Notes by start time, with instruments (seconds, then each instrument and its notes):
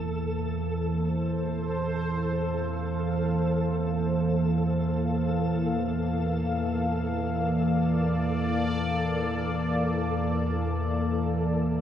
Already playing: synth drone E2 E3, analog synth pad E3 A#3, synth texture A4
0.40 analog synth pad C5
1.68 analog synth pad F5
7.12 analog synth pad D5